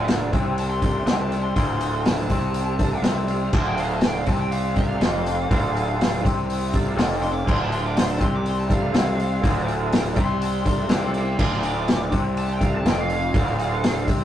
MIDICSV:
0, 0, Header, 1, 6, 480
1, 0, Start_track
1, 0, Key_signature, -1, "minor"
1, 0, Tempo, 490998
1, 1529, Time_signature, 4, 2, 24, 8
1, 13921, End_track
2, 0, Start_track
2, 0, Title_t, "Lead electric guitar"
2, 0, Program_c, 0, 29
2, 579, Note_on_c, 0, 81, 90
2, 682, Note_off_c, 0, 81, 0
2, 686, Note_on_c, 0, 84, 86
2, 1153, Note_off_c, 0, 84, 0
2, 1174, Note_on_c, 0, 81, 89
2, 1391, Note_off_c, 0, 81, 0
2, 1395, Note_on_c, 0, 84, 90
2, 1515, Note_off_c, 0, 84, 0
2, 1527, Note_on_c, 0, 84, 101
2, 1995, Note_off_c, 0, 84, 0
2, 2025, Note_on_c, 0, 81, 103
2, 2952, Note_off_c, 0, 81, 0
2, 3461, Note_on_c, 0, 81, 95
2, 3590, Note_off_c, 0, 81, 0
2, 3590, Note_on_c, 0, 79, 90
2, 3699, Note_off_c, 0, 79, 0
2, 3710, Note_on_c, 0, 77, 92
2, 3819, Note_off_c, 0, 77, 0
2, 3844, Note_on_c, 0, 81, 97
2, 3959, Note_off_c, 0, 81, 0
2, 3959, Note_on_c, 0, 79, 106
2, 4076, Note_off_c, 0, 79, 0
2, 4076, Note_on_c, 0, 77, 93
2, 4178, Note_off_c, 0, 77, 0
2, 4182, Note_on_c, 0, 81, 94
2, 4309, Note_off_c, 0, 81, 0
2, 4309, Note_on_c, 0, 79, 82
2, 4412, Note_off_c, 0, 79, 0
2, 4412, Note_on_c, 0, 77, 101
2, 4648, Note_off_c, 0, 77, 0
2, 4676, Note_on_c, 0, 77, 100
2, 6070, Note_off_c, 0, 77, 0
2, 7063, Note_on_c, 0, 84, 93
2, 7164, Note_off_c, 0, 84, 0
2, 7168, Note_on_c, 0, 86, 101
2, 7291, Note_off_c, 0, 86, 0
2, 7317, Note_on_c, 0, 84, 96
2, 7426, Note_off_c, 0, 84, 0
2, 7452, Note_on_c, 0, 81, 101
2, 7551, Note_on_c, 0, 84, 76
2, 7554, Note_off_c, 0, 81, 0
2, 7683, Note_off_c, 0, 84, 0
2, 7683, Note_on_c, 0, 86, 92
2, 7798, Note_off_c, 0, 86, 0
2, 7798, Note_on_c, 0, 84, 95
2, 7907, Note_off_c, 0, 84, 0
2, 7933, Note_on_c, 0, 81, 87
2, 8035, Note_off_c, 0, 81, 0
2, 8051, Note_on_c, 0, 84, 101
2, 8153, Note_off_c, 0, 84, 0
2, 8171, Note_on_c, 0, 86, 94
2, 8295, Note_off_c, 0, 86, 0
2, 8295, Note_on_c, 0, 84, 87
2, 8397, Note_off_c, 0, 84, 0
2, 8397, Note_on_c, 0, 81, 85
2, 8506, Note_off_c, 0, 81, 0
2, 8536, Note_on_c, 0, 77, 102
2, 9449, Note_off_c, 0, 77, 0
2, 9939, Note_on_c, 0, 81, 90
2, 9953, Note_on_c, 0, 84, 105
2, 10179, Note_off_c, 0, 81, 0
2, 10179, Note_off_c, 0, 84, 0
2, 10193, Note_on_c, 0, 81, 88
2, 10215, Note_on_c, 0, 84, 105
2, 10410, Note_off_c, 0, 81, 0
2, 10417, Note_off_c, 0, 84, 0
2, 10423, Note_on_c, 0, 81, 80
2, 10429, Note_on_c, 0, 84, 95
2, 10644, Note_off_c, 0, 81, 0
2, 10656, Note_off_c, 0, 84, 0
2, 10674, Note_on_c, 0, 77, 77
2, 10680, Note_on_c, 0, 86, 90
2, 10890, Note_off_c, 0, 77, 0
2, 10902, Note_off_c, 0, 86, 0
2, 10928, Note_on_c, 0, 77, 81
2, 10932, Note_on_c, 0, 86, 85
2, 11137, Note_off_c, 0, 77, 0
2, 11145, Note_off_c, 0, 86, 0
2, 11155, Note_on_c, 0, 77, 72
2, 11169, Note_on_c, 0, 86, 95
2, 11369, Note_off_c, 0, 77, 0
2, 11386, Note_off_c, 0, 86, 0
2, 11402, Note_on_c, 0, 86, 98
2, 11854, Note_off_c, 0, 86, 0
2, 12103, Note_on_c, 0, 81, 102
2, 12242, Note_off_c, 0, 81, 0
2, 12242, Note_on_c, 0, 79, 91
2, 12356, Note_off_c, 0, 79, 0
2, 12356, Note_on_c, 0, 77, 104
2, 12461, Note_off_c, 0, 77, 0
2, 12465, Note_on_c, 0, 81, 88
2, 12575, Note_off_c, 0, 81, 0
2, 12603, Note_on_c, 0, 79, 92
2, 12704, Note_off_c, 0, 79, 0
2, 12709, Note_on_c, 0, 77, 84
2, 12817, Note_off_c, 0, 77, 0
2, 12836, Note_on_c, 0, 77, 89
2, 13752, Note_off_c, 0, 77, 0
2, 13921, End_track
3, 0, Start_track
3, 0, Title_t, "Tonewheel organ"
3, 0, Program_c, 1, 16
3, 0, Note_on_c, 1, 57, 67
3, 0, Note_on_c, 1, 62, 69
3, 0, Note_on_c, 1, 65, 65
3, 0, Note_on_c, 1, 69, 76
3, 360, Note_off_c, 1, 57, 0
3, 364, Note_off_c, 1, 65, 0
3, 366, Note_off_c, 1, 62, 0
3, 367, Note_off_c, 1, 69, 0
3, 794, Note_on_c, 1, 57, 73
3, 805, Note_on_c, 1, 62, 69
3, 813, Note_on_c, 1, 65, 66
3, 818, Note_on_c, 1, 67, 86
3, 1368, Note_off_c, 1, 57, 0
3, 1373, Note_off_c, 1, 62, 0
3, 1378, Note_off_c, 1, 65, 0
3, 1380, Note_off_c, 1, 67, 0
3, 1517, Note_on_c, 1, 57, 69
3, 1519, Note_on_c, 1, 62, 64
3, 1519, Note_on_c, 1, 65, 64
3, 1519, Note_on_c, 1, 69, 76
3, 2280, Note_off_c, 1, 57, 0
3, 2281, Note_off_c, 1, 62, 0
3, 2281, Note_off_c, 1, 65, 0
3, 2281, Note_off_c, 1, 69, 0
3, 2722, Note_on_c, 1, 57, 86
3, 2733, Note_on_c, 1, 65, 77
3, 2734, Note_on_c, 1, 62, 80
3, 2741, Note_on_c, 1, 69, 103
3, 2976, Note_on_c, 1, 81, 65
3, 3198, Note_off_c, 1, 81, 0
3, 3224, Note_on_c, 1, 77, 70
3, 3295, Note_off_c, 1, 57, 0
3, 3300, Note_off_c, 1, 65, 0
3, 3301, Note_off_c, 1, 62, 0
3, 3304, Note_off_c, 1, 69, 0
3, 3443, Note_off_c, 1, 77, 0
3, 3460, Note_on_c, 1, 57, 75
3, 3460, Note_on_c, 1, 65, 64
3, 3463, Note_on_c, 1, 62, 73
3, 3470, Note_on_c, 1, 72, 81
3, 4214, Note_off_c, 1, 57, 0
3, 4214, Note_off_c, 1, 65, 0
3, 4216, Note_off_c, 1, 62, 0
3, 4219, Note_off_c, 1, 72, 0
3, 4661, Note_on_c, 1, 57, 74
3, 4670, Note_on_c, 1, 62, 68
3, 4677, Note_on_c, 1, 72, 84
3, 4679, Note_on_c, 1, 65, 69
3, 5227, Note_off_c, 1, 57, 0
3, 5231, Note_off_c, 1, 62, 0
3, 5235, Note_off_c, 1, 72, 0
3, 5236, Note_off_c, 1, 65, 0
3, 5387, Note_on_c, 1, 62, 83
3, 5396, Note_on_c, 1, 65, 87
3, 5399, Note_on_c, 1, 57, 88
3, 5401, Note_on_c, 1, 69, 96
3, 6139, Note_off_c, 1, 62, 0
3, 6144, Note_off_c, 1, 65, 0
3, 6145, Note_off_c, 1, 57, 0
3, 6146, Note_off_c, 1, 69, 0
3, 6586, Note_on_c, 1, 57, 84
3, 6596, Note_on_c, 1, 62, 79
3, 6604, Note_on_c, 1, 69, 91
3, 6606, Note_on_c, 1, 65, 81
3, 7150, Note_off_c, 1, 57, 0
3, 7155, Note_off_c, 1, 62, 0
3, 7159, Note_off_c, 1, 69, 0
3, 7160, Note_off_c, 1, 65, 0
3, 7310, Note_on_c, 1, 57, 69
3, 7315, Note_on_c, 1, 62, 64
3, 7319, Note_on_c, 1, 65, 65
3, 7320, Note_on_c, 1, 72, 80
3, 8061, Note_off_c, 1, 57, 0
3, 8063, Note_off_c, 1, 62, 0
3, 8065, Note_off_c, 1, 65, 0
3, 8066, Note_off_c, 1, 72, 0
3, 8487, Note_on_c, 1, 57, 71
3, 8495, Note_on_c, 1, 62, 62
3, 8496, Note_on_c, 1, 65, 70
3, 8497, Note_on_c, 1, 69, 83
3, 9060, Note_off_c, 1, 57, 0
3, 9064, Note_off_c, 1, 62, 0
3, 9065, Note_off_c, 1, 65, 0
3, 9065, Note_off_c, 1, 69, 0
3, 9194, Note_on_c, 1, 57, 92
3, 9200, Note_on_c, 1, 62, 84
3, 9204, Note_on_c, 1, 69, 99
3, 9208, Note_on_c, 1, 65, 74
3, 9961, Note_off_c, 1, 57, 0
3, 9964, Note_off_c, 1, 62, 0
3, 9966, Note_off_c, 1, 69, 0
3, 9968, Note_off_c, 1, 65, 0
3, 10425, Note_on_c, 1, 57, 73
3, 10428, Note_on_c, 1, 65, 65
3, 10429, Note_on_c, 1, 62, 68
3, 10443, Note_on_c, 1, 69, 81
3, 10986, Note_off_c, 1, 57, 0
3, 10988, Note_off_c, 1, 65, 0
3, 10989, Note_off_c, 1, 62, 0
3, 10996, Note_off_c, 1, 69, 0
3, 11152, Note_on_c, 1, 57, 76
3, 11158, Note_on_c, 1, 69, 76
3, 11159, Note_on_c, 1, 65, 66
3, 11163, Note_on_c, 1, 62, 65
3, 11897, Note_off_c, 1, 57, 0
3, 11900, Note_off_c, 1, 69, 0
3, 11901, Note_off_c, 1, 65, 0
3, 11902, Note_off_c, 1, 62, 0
3, 12325, Note_on_c, 1, 57, 70
3, 12336, Note_on_c, 1, 62, 68
3, 12339, Note_on_c, 1, 65, 69
3, 12344, Note_on_c, 1, 69, 86
3, 12893, Note_off_c, 1, 57, 0
3, 12898, Note_off_c, 1, 62, 0
3, 12900, Note_off_c, 1, 65, 0
3, 12903, Note_off_c, 1, 69, 0
3, 13028, Note_on_c, 1, 57, 81
3, 13028, Note_on_c, 1, 62, 65
3, 13033, Note_on_c, 1, 69, 78
3, 13039, Note_on_c, 1, 65, 71
3, 13791, Note_off_c, 1, 57, 0
3, 13791, Note_off_c, 1, 62, 0
3, 13794, Note_off_c, 1, 69, 0
3, 13797, Note_off_c, 1, 65, 0
3, 13921, End_track
4, 0, Start_track
4, 0, Title_t, "Overdriven electric guitar"
4, 0, Program_c, 2, 29
4, 0, Note_on_c, 2, 38, 91
4, 312, Note_off_c, 2, 38, 0
4, 322, Note_on_c, 2, 48, 100
4, 1032, Note_off_c, 2, 48, 0
4, 1044, Note_on_c, 2, 48, 96
4, 1520, Note_off_c, 2, 48, 0
4, 1525, Note_on_c, 2, 38, 104
4, 2242, Note_off_c, 2, 38, 0
4, 2254, Note_on_c, 2, 48, 97
4, 2959, Note_off_c, 2, 48, 0
4, 2971, Note_on_c, 2, 48, 94
4, 3446, Note_off_c, 2, 48, 0
4, 3456, Note_on_c, 2, 38, 97
4, 4170, Note_off_c, 2, 38, 0
4, 4178, Note_on_c, 2, 48, 101
4, 4892, Note_off_c, 2, 48, 0
4, 4901, Note_on_c, 2, 41, 102
4, 5372, Note_off_c, 2, 41, 0
4, 5376, Note_on_c, 2, 38, 101
4, 6086, Note_off_c, 2, 38, 0
4, 6090, Note_on_c, 2, 48, 90
4, 6800, Note_off_c, 2, 48, 0
4, 6804, Note_on_c, 2, 41, 95
4, 7281, Note_off_c, 2, 41, 0
4, 7285, Note_on_c, 2, 38, 105
4, 8004, Note_off_c, 2, 38, 0
4, 8008, Note_on_c, 2, 48, 88
4, 8717, Note_off_c, 2, 48, 0
4, 8729, Note_on_c, 2, 48, 97
4, 9207, Note_off_c, 2, 48, 0
4, 9219, Note_on_c, 2, 38, 95
4, 9932, Note_off_c, 2, 38, 0
4, 9940, Note_on_c, 2, 48, 101
4, 10644, Note_off_c, 2, 48, 0
4, 10655, Note_on_c, 2, 48, 102
4, 11128, Note_off_c, 2, 48, 0
4, 11134, Note_on_c, 2, 38, 96
4, 11845, Note_off_c, 2, 38, 0
4, 11849, Note_on_c, 2, 48, 100
4, 12562, Note_off_c, 2, 48, 0
4, 12571, Note_on_c, 2, 41, 112
4, 13043, Note_off_c, 2, 41, 0
4, 13049, Note_on_c, 2, 38, 105
4, 13760, Note_off_c, 2, 38, 0
4, 13767, Note_on_c, 2, 48, 101
4, 13921, Note_off_c, 2, 48, 0
4, 13921, End_track
5, 0, Start_track
5, 0, Title_t, "Fingered electric bass"
5, 0, Program_c, 3, 33
5, 0, Note_on_c, 3, 26, 89
5, 284, Note_off_c, 3, 26, 0
5, 323, Note_on_c, 3, 36, 83
5, 1007, Note_off_c, 3, 36, 0
5, 1034, Note_on_c, 3, 36, 100
5, 1488, Note_off_c, 3, 36, 0
5, 1528, Note_on_c, 3, 26, 88
5, 2211, Note_off_c, 3, 26, 0
5, 2241, Note_on_c, 3, 36, 90
5, 2929, Note_off_c, 3, 36, 0
5, 2951, Note_on_c, 3, 36, 102
5, 3409, Note_off_c, 3, 36, 0
5, 3452, Note_on_c, 3, 26, 98
5, 4136, Note_off_c, 3, 26, 0
5, 4176, Note_on_c, 3, 36, 89
5, 4859, Note_off_c, 3, 36, 0
5, 4890, Note_on_c, 3, 29, 98
5, 5342, Note_off_c, 3, 29, 0
5, 5381, Note_on_c, 3, 26, 96
5, 6062, Note_off_c, 3, 26, 0
5, 6109, Note_on_c, 3, 36, 100
5, 6787, Note_off_c, 3, 36, 0
5, 6813, Note_on_c, 3, 29, 91
5, 7264, Note_off_c, 3, 29, 0
5, 7310, Note_on_c, 3, 26, 93
5, 7987, Note_off_c, 3, 26, 0
5, 8027, Note_on_c, 3, 36, 97
5, 8705, Note_off_c, 3, 36, 0
5, 8741, Note_on_c, 3, 36, 106
5, 9187, Note_off_c, 3, 36, 0
5, 9219, Note_on_c, 3, 26, 95
5, 9900, Note_off_c, 3, 26, 0
5, 9941, Note_on_c, 3, 36, 85
5, 10620, Note_off_c, 3, 36, 0
5, 10650, Note_on_c, 3, 36, 108
5, 11099, Note_off_c, 3, 36, 0
5, 11134, Note_on_c, 3, 26, 99
5, 11814, Note_off_c, 3, 26, 0
5, 11846, Note_on_c, 3, 36, 93
5, 12529, Note_off_c, 3, 36, 0
5, 12565, Note_on_c, 3, 29, 104
5, 13013, Note_off_c, 3, 29, 0
5, 13045, Note_on_c, 3, 26, 102
5, 13726, Note_off_c, 3, 26, 0
5, 13757, Note_on_c, 3, 36, 97
5, 13921, Note_off_c, 3, 36, 0
5, 13921, End_track
6, 0, Start_track
6, 0, Title_t, "Drums"
6, 79, Note_on_c, 9, 46, 77
6, 86, Note_on_c, 9, 38, 108
6, 177, Note_off_c, 9, 46, 0
6, 184, Note_off_c, 9, 38, 0
6, 322, Note_on_c, 9, 46, 57
6, 323, Note_on_c, 9, 36, 84
6, 420, Note_off_c, 9, 36, 0
6, 420, Note_off_c, 9, 46, 0
6, 565, Note_on_c, 9, 46, 78
6, 663, Note_off_c, 9, 46, 0
6, 802, Note_on_c, 9, 46, 63
6, 804, Note_on_c, 9, 36, 86
6, 900, Note_off_c, 9, 46, 0
6, 902, Note_off_c, 9, 36, 0
6, 1045, Note_on_c, 9, 46, 69
6, 1052, Note_on_c, 9, 38, 105
6, 1143, Note_off_c, 9, 46, 0
6, 1150, Note_off_c, 9, 38, 0
6, 1289, Note_on_c, 9, 46, 61
6, 1387, Note_off_c, 9, 46, 0
6, 1527, Note_on_c, 9, 36, 100
6, 1527, Note_on_c, 9, 46, 81
6, 1624, Note_off_c, 9, 46, 0
6, 1625, Note_off_c, 9, 36, 0
6, 1766, Note_on_c, 9, 46, 64
6, 1864, Note_off_c, 9, 46, 0
6, 2008, Note_on_c, 9, 46, 82
6, 2015, Note_on_c, 9, 38, 117
6, 2106, Note_off_c, 9, 46, 0
6, 2113, Note_off_c, 9, 38, 0
6, 2244, Note_on_c, 9, 46, 58
6, 2247, Note_on_c, 9, 36, 77
6, 2341, Note_off_c, 9, 46, 0
6, 2344, Note_off_c, 9, 36, 0
6, 2485, Note_on_c, 9, 46, 79
6, 2583, Note_off_c, 9, 46, 0
6, 2728, Note_on_c, 9, 46, 61
6, 2729, Note_on_c, 9, 36, 88
6, 2826, Note_off_c, 9, 46, 0
6, 2827, Note_off_c, 9, 36, 0
6, 2968, Note_on_c, 9, 46, 76
6, 2975, Note_on_c, 9, 38, 107
6, 3066, Note_off_c, 9, 46, 0
6, 3072, Note_off_c, 9, 38, 0
6, 3207, Note_on_c, 9, 46, 53
6, 3305, Note_off_c, 9, 46, 0
6, 3449, Note_on_c, 9, 49, 93
6, 3453, Note_on_c, 9, 36, 115
6, 3547, Note_off_c, 9, 49, 0
6, 3550, Note_off_c, 9, 36, 0
6, 3689, Note_on_c, 9, 46, 58
6, 3787, Note_off_c, 9, 46, 0
6, 3922, Note_on_c, 9, 46, 72
6, 3929, Note_on_c, 9, 38, 113
6, 4020, Note_off_c, 9, 46, 0
6, 4026, Note_off_c, 9, 38, 0
6, 4167, Note_on_c, 9, 46, 54
6, 4175, Note_on_c, 9, 36, 84
6, 4265, Note_off_c, 9, 46, 0
6, 4273, Note_off_c, 9, 36, 0
6, 4418, Note_on_c, 9, 46, 76
6, 4516, Note_off_c, 9, 46, 0
6, 4652, Note_on_c, 9, 46, 54
6, 4659, Note_on_c, 9, 36, 86
6, 4749, Note_off_c, 9, 46, 0
6, 4757, Note_off_c, 9, 36, 0
6, 4899, Note_on_c, 9, 46, 81
6, 4906, Note_on_c, 9, 38, 110
6, 4997, Note_off_c, 9, 46, 0
6, 5004, Note_off_c, 9, 38, 0
6, 5146, Note_on_c, 9, 46, 62
6, 5244, Note_off_c, 9, 46, 0
6, 5386, Note_on_c, 9, 36, 118
6, 5389, Note_on_c, 9, 46, 81
6, 5483, Note_off_c, 9, 36, 0
6, 5487, Note_off_c, 9, 46, 0
6, 5636, Note_on_c, 9, 46, 58
6, 5734, Note_off_c, 9, 46, 0
6, 5877, Note_on_c, 9, 46, 83
6, 5884, Note_on_c, 9, 38, 102
6, 5975, Note_off_c, 9, 46, 0
6, 5982, Note_off_c, 9, 38, 0
6, 6110, Note_on_c, 9, 36, 87
6, 6117, Note_on_c, 9, 46, 59
6, 6208, Note_off_c, 9, 36, 0
6, 6215, Note_off_c, 9, 46, 0
6, 6352, Note_on_c, 9, 46, 81
6, 6450, Note_off_c, 9, 46, 0
6, 6586, Note_on_c, 9, 36, 90
6, 6586, Note_on_c, 9, 46, 65
6, 6683, Note_off_c, 9, 46, 0
6, 6684, Note_off_c, 9, 36, 0
6, 6828, Note_on_c, 9, 46, 76
6, 6835, Note_on_c, 9, 38, 97
6, 6926, Note_off_c, 9, 46, 0
6, 6933, Note_off_c, 9, 38, 0
6, 7069, Note_on_c, 9, 46, 59
6, 7166, Note_off_c, 9, 46, 0
6, 7307, Note_on_c, 9, 36, 105
6, 7314, Note_on_c, 9, 57, 94
6, 7405, Note_off_c, 9, 36, 0
6, 7412, Note_off_c, 9, 57, 0
6, 7548, Note_on_c, 9, 46, 54
6, 7646, Note_off_c, 9, 46, 0
6, 7790, Note_on_c, 9, 46, 84
6, 7797, Note_on_c, 9, 38, 110
6, 7888, Note_off_c, 9, 46, 0
6, 7895, Note_off_c, 9, 38, 0
6, 8024, Note_on_c, 9, 36, 87
6, 8026, Note_on_c, 9, 46, 55
6, 8122, Note_off_c, 9, 36, 0
6, 8124, Note_off_c, 9, 46, 0
6, 8268, Note_on_c, 9, 46, 71
6, 8366, Note_off_c, 9, 46, 0
6, 8505, Note_on_c, 9, 36, 93
6, 8511, Note_on_c, 9, 46, 61
6, 8602, Note_off_c, 9, 36, 0
6, 8609, Note_off_c, 9, 46, 0
6, 8742, Note_on_c, 9, 46, 75
6, 8748, Note_on_c, 9, 38, 111
6, 8839, Note_off_c, 9, 46, 0
6, 8846, Note_off_c, 9, 38, 0
6, 8991, Note_on_c, 9, 46, 57
6, 9088, Note_off_c, 9, 46, 0
6, 9225, Note_on_c, 9, 36, 108
6, 9231, Note_on_c, 9, 46, 70
6, 9323, Note_off_c, 9, 36, 0
6, 9329, Note_off_c, 9, 46, 0
6, 9466, Note_on_c, 9, 46, 55
6, 9563, Note_off_c, 9, 46, 0
6, 9703, Note_on_c, 9, 46, 89
6, 9710, Note_on_c, 9, 38, 113
6, 9801, Note_off_c, 9, 46, 0
6, 9808, Note_off_c, 9, 38, 0
6, 9933, Note_on_c, 9, 46, 58
6, 9938, Note_on_c, 9, 36, 88
6, 10031, Note_off_c, 9, 46, 0
6, 10036, Note_off_c, 9, 36, 0
6, 10183, Note_on_c, 9, 46, 79
6, 10280, Note_off_c, 9, 46, 0
6, 10417, Note_on_c, 9, 36, 87
6, 10419, Note_on_c, 9, 46, 67
6, 10515, Note_off_c, 9, 36, 0
6, 10517, Note_off_c, 9, 46, 0
6, 10647, Note_on_c, 9, 46, 78
6, 10654, Note_on_c, 9, 38, 107
6, 10745, Note_off_c, 9, 46, 0
6, 10752, Note_off_c, 9, 38, 0
6, 10889, Note_on_c, 9, 46, 58
6, 10987, Note_off_c, 9, 46, 0
6, 11134, Note_on_c, 9, 36, 105
6, 11134, Note_on_c, 9, 57, 100
6, 11232, Note_off_c, 9, 36, 0
6, 11232, Note_off_c, 9, 57, 0
6, 11371, Note_on_c, 9, 46, 64
6, 11468, Note_off_c, 9, 46, 0
6, 11614, Note_on_c, 9, 46, 76
6, 11621, Note_on_c, 9, 38, 125
6, 11712, Note_off_c, 9, 46, 0
6, 11719, Note_off_c, 9, 38, 0
6, 11849, Note_on_c, 9, 46, 63
6, 11851, Note_on_c, 9, 36, 85
6, 11947, Note_off_c, 9, 46, 0
6, 11948, Note_off_c, 9, 36, 0
6, 12093, Note_on_c, 9, 46, 76
6, 12191, Note_off_c, 9, 46, 0
6, 12328, Note_on_c, 9, 36, 91
6, 12329, Note_on_c, 9, 46, 59
6, 12426, Note_off_c, 9, 36, 0
6, 12427, Note_off_c, 9, 46, 0
6, 12569, Note_on_c, 9, 46, 74
6, 12576, Note_on_c, 9, 38, 105
6, 12667, Note_off_c, 9, 46, 0
6, 12674, Note_off_c, 9, 38, 0
6, 12804, Note_on_c, 9, 46, 57
6, 12901, Note_off_c, 9, 46, 0
6, 13044, Note_on_c, 9, 36, 112
6, 13045, Note_on_c, 9, 46, 74
6, 13141, Note_off_c, 9, 36, 0
6, 13143, Note_off_c, 9, 46, 0
6, 13288, Note_on_c, 9, 46, 58
6, 13386, Note_off_c, 9, 46, 0
6, 13528, Note_on_c, 9, 46, 87
6, 13535, Note_on_c, 9, 38, 110
6, 13626, Note_off_c, 9, 46, 0
6, 13633, Note_off_c, 9, 38, 0
6, 13761, Note_on_c, 9, 36, 92
6, 13764, Note_on_c, 9, 46, 63
6, 13859, Note_off_c, 9, 36, 0
6, 13861, Note_off_c, 9, 46, 0
6, 13921, End_track
0, 0, End_of_file